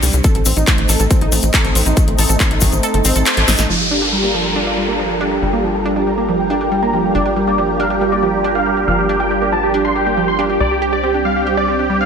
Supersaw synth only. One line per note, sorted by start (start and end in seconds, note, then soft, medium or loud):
3.70 3.79 F5 medium
3.80 3.90 G4 medium
3.91 4.01 G4 medium
4.02 4.12 G5 medium
4.13 4.23 G4 medium
4.24 4.33 G4 medium
4.34 4.44 A5 medium
4.45 4.55 G4 medium
4.56 4.66 G4 medium
4.67 4.76 F5 medium
4.78 4.87 G4 medium
4.88 4.98 G4 medium
4.99 5.09 G4 medium
5.10 5.20 A5 medium
5.21 5.30 G4 medium
5.32 5.41 G4 medium
5.42 5.52 G5 loud
5.53 5.63 G4 medium
5.64 5.74 G4 medium
5.75 5.84 A5 medium
5.86 5.95 G4 medium
5.96 6.06 G4 medium
6.07 6.17 A#5 medium
6.18 6.28 G4 medium
6.29 6.38 G4 medium
6.40 6.49 G5 medium
6.50 6.60 G4 medium
6.61 6.71 G4 medium
6.72 6.81 G4 medium
6.83 6.92 A#5 medium
6.93 7.03 G4 medium
7.04 7.14 G4 medium
7.15 7.25 D5 loud
7.26 7.35 G4 medium
7.37 7.46 G4 medium
7.47 7.57 D5 medium
7.58 7.68 G4 medium
7.69 7.79 G4 medium
7.80 7.89 F5 medium
7.91 8.00 G4 medium
8.01 8.11 G4 medium
8.12 8.22 D5 medium
8.23 8.33 G4 medium
8.34 8.43 G4 medium
8.45 8.54 G4 medium
8.55 8.65 F5 medium
8.66 8.76 G4 medium
8.77 8.87 G4 medium
8.88 8.97 F5 medium
8.99 9.08 G4 medium
9.09 9.19 G4 medium
9.20 9.30 G5 medium
9.31 9.40 G4 medium
9.42 9.51 G4 medium
9.52 9.62 A5 medium
9.63 9.73 G4 medium
9.74 9.84 G4 medium
9.85 9.94 C6 medium
9.96 10.05 G4 medium
10.06 10.16 G4 medium
10.17 10.27 G4 medium
10.28 10.38 C6 medium
10.39 10.48 G4 medium
10.50 10.59 G4 medium
10.60 10.70 D5 loud
10.71 10.81 G4 medium
10.82 10.92 G4 medium
10.93 11.02 D5 medium
11.04 11.13 G4 medium
11.14 11.24 G4 medium
11.25 11.35 F5 medium
11.36 11.45 G4 medium
11.47 11.56 G4 medium
11.57 11.67 D5 medium
11.68 11.78 G4 medium
11.79 11.89 G4 medium
11.90 12.00 G4 medium
12.01 12.05 F5 medium